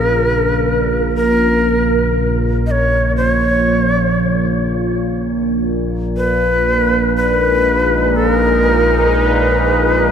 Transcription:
0.00 10.12 A#1 medium
0.00 6.59 A#2 medium
0.00 10.12 A#2 medium
0.00 5.15 C#3 medium
0.00 5.15 F4 medium
0.00 1.15 A#4 medium
1.16 2.35 A#4 loud
2.66 2.72 D#5 medium
2.71 3.12 C#5 medium
3.17 3.31 C5 loud
3.31 4.62 C#5 loud
6.17 7.12 B4 loud
7.03 10.12 D#4 medium
7.17 8.18 B4 loud
7.24 10.12 G#3 medium
8.16 8.32 A4 loud
8.32 9.17 A#4 loud
9.15 10.12 B4 loud

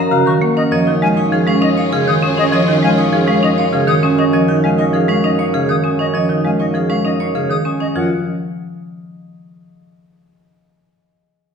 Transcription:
0.00 0.54 F#2 medium
0.00 0.16 A#4 medium
0.00 0.55 A#4 medium
0.00 0.73 D#5 loud
0.00 0.40 F#5 medium
0.00 0.73 A#5 loud
0.11 0.31 C#3 medium
0.11 0.31 F#4 loud
0.11 1.01 F5 medium
0.26 0.46 D#3 loud
0.26 0.46 A#4 medium
0.26 0.32 C#6 medium
0.41 0.61 A#3 medium
0.41 0.73 F#5 medium
0.56 0.77 C#4 loud
0.56 0.73 A#4 medium
0.56 0.62 D#5 loud
0.71 7.78 F#2 loud
0.71 0.92 F3 loud
0.71 4.14 C#4 medium
0.71 4.14 F4 medium
0.71 0.92 D#5 medium
0.71 1.15 C#6 loud
0.87 1.07 D#3 medium
0.87 1.07 D#4 medium
1.02 1.22 G#3 medium
1.02 1.31 F5 medium
1.02 1.08 G#5 loud
1.17 1.37 D#4 loud
1.17 1.75 C#6 loud
1.32 1.52 F3 loud
1.32 1.52 G#4 medium
1.32 1.91 F5 medium
1.47 1.67 G#3 loud
1.47 1.67 C#4 loud
1.47 1.53 F5 loud
1.61 1.82 D#4 loud
1.61 3.43 D#5 loud
1.61 1.68 D#5 loud
1.77 1.97 C#5 medium
1.77 1.84 F5 medium
1.77 2.52 C#6 loud
1.92 2.12 C#3 medium
1.92 2.12 G#4 loud
1.92 2.82 F5 medium
2.07 2.27 D#3 loud
2.07 2.27 C#5 medium
2.07 2.14 D#6 loud
2.22 2.42 C#4 loud
2.22 4.03 G#5 medium
2.38 2.57 C#4 loud
2.38 4.18 G#4 medium
2.38 2.44 D#5 loud
2.53 2.72 F3 loud
2.53 2.72 D#5 loud
2.53 2.97 C#6 loud
2.68 2.87 D#3 medium
2.68 2.87 D#4 medium
2.83 3.02 G#3 medium
2.83 3.13 F5 loud
2.83 2.89 G#5 loud
2.98 3.18 D#4 medium
2.98 3.58 C#6 loud
3.13 3.33 F3 medium
3.13 3.33 G#4 medium
3.13 3.72 F5 medium
3.28 3.48 G#3 loud
3.28 3.48 C#4 loud
3.28 3.34 F5 loud
3.43 3.63 D#4 loud
3.43 3.49 D#5 medium
3.43 5.23 D#5 loud
3.58 3.78 C#5 loud
3.58 3.64 F5 loud
3.58 4.32 C#6 loud
3.73 3.93 C#3 medium
3.73 3.93 G#4 loud
3.73 4.63 F5 medium
3.88 4.08 D#3 loud
3.88 4.08 C#5 medium
3.88 3.94 D#6 medium
4.03 4.23 C#4 loud
4.03 5.83 G#5 medium
4.18 4.38 C#4 loud
4.18 5.98 G#4 medium
4.18 4.24 D#5 loud
4.33 4.53 F3 loud
4.33 4.53 D#5 medium
4.33 4.78 C#6 loud
4.48 4.68 D#3 medium
4.48 4.68 D#4 medium
4.63 4.83 G#3 medium
4.63 4.93 F5 medium
4.63 4.69 G#5 loud
4.78 4.98 D#4 medium
4.78 4.84 D#5 medium
4.78 5.38 C#6 medium
4.93 5.13 F3 medium
4.93 5.14 G#4 medium
4.93 5.53 F5 medium
5.08 5.28 G#3 medium
5.08 5.29 C#4 loud
5.08 5.15 F5 loud
5.24 5.44 D#4 loud
5.24 7.04 D#5 loud
5.24 5.30 D#5 medium
5.39 5.59 C#5 medium
5.39 5.45 F5 medium
5.39 6.13 C#6 medium
5.54 5.74 C#3 medium
5.54 5.74 G#4 medium
5.54 6.44 F5 medium
5.69 5.89 D#3 loud
5.69 5.89 C#5 medium
5.69 5.75 D#6 medium
5.84 6.04 C#4 medium
5.84 7.64 G#5 medium
5.99 6.19 C#4 loud
5.99 7.79 G#4 medium
5.99 6.05 D#5 medium
6.14 6.34 F3 medium
6.14 6.34 D#5 medium
6.14 6.58 C#6 medium
6.29 6.49 D#3 medium
6.29 6.49 D#4 medium
6.44 6.64 G#3 medium
6.44 6.74 F5 medium
6.44 6.50 G#5 medium
6.59 6.79 D#4 medium
6.59 6.66 D#5 medium
6.59 7.19 C#6 medium
6.74 6.94 F3 medium
6.74 6.94 G#4 medium
6.74 7.34 F5 medium
6.90 7.10 G#3 medium
6.90 7.10 C#4 loud
6.90 6.96 F5 medium
7.04 7.25 D#4 medium
7.04 7.10 D#5 medium
7.04 7.94 D#5 medium
7.20 7.40 C#5 medium
7.20 7.26 F5 medium
7.20 9.78 C#6 medium
7.35 7.55 C#3 medium
7.35 7.55 G#4 medium
7.35 7.97 F5 medium
7.50 7.70 D#3 medium
7.50 7.70 C#5 medium
7.50 7.56 D#6 medium
7.65 7.85 C#4 medium
7.65 7.97 G#5 medium
7.80 8.00 C#4 medium
7.80 7.96 G#4 medium
7.80 7.86 D#5 medium
7.95 8.09 F#2 medium
7.95 8.10 F3 medium
7.95 8.10 F4 medium
7.95 8.09 D#5 medium
7.95 8.10 F#5 medium

